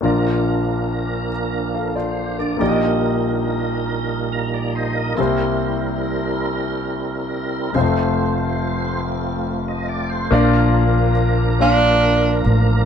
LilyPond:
<<
  \new Staff \with { instrumentName = "Tonewheel organ" } { \time 6/8 \key bes \major \tempo 4. = 47 << { r2 bes'16 c''8 d''16~ | d''16 r4. r16 <bes' bes''>16 d''16 <c'' ees''>16 bes'16~ | bes'16 r2 r8. | r2 r16 ees''16 d''16 c''16~ |
c''16 r2 r8. | } \\ { <f bes d' bes'>2. | <bes, g bes ees' bes'>2. | <g c' e' a' bes'>2. | <aes a c' f' c''>2. |
<f bes d' bes'>2. | } >> }
  \new Staff \with { instrumentName = "Grand piano" } { \time 6/8 \key bes \major << { r2 <a' f''>16 <f' d''>8 <d' bes'>16~ | <d' bes'>16 r2 r8. | r2. | r2. |
r2. | } \\ { <bes d' f' d''>2. | <bes ees' g' d'' ees''>2. | <bes e' g' c''>2. | <aes a c' f' c''>2. |
<bes d' f' d''>4 r8 <bes d' f' f''>4 r8 | } >> }
  \new Staff \with { instrumentName = "Grand piano" } { \clef bass \time 6/8 \key bes \major <bes,, bes,>2. | <bes,, bes,>2. | <c, c>2. | <f,, f,>2. |
bes,4. r4. | }
  \new Staff \with { instrumentName = "Tenor saxophone" } { \time 6/8 \key bes \major r2. | r2. | r2. | r2. |
r4. d'4 r8 | }
  \new Staff \with { instrumentName = "Fingered electric bass" } { \clef bass \time 6/8 \key bes \major r2. | r2. | r2. | r2. |
bes,,2~ bes,,8 a,,8 | }
>>